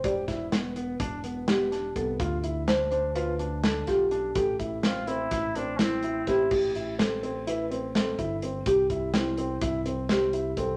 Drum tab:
CC |---------|---------|---------|x--------|
HH |xxxxxxxxx|xxxxxxxxx|xxxxxxxxx|-xxxxxxxx|
SD |-oo---oo-|--o---oo-|--o-o-o-o|--o---o--|
BD |oo--o---o|o------o-|oo--o---o|o------o-|

CC |---------|
HH |xxxxxxxxx|
SD |--o---o--|
BD |oo--o---o|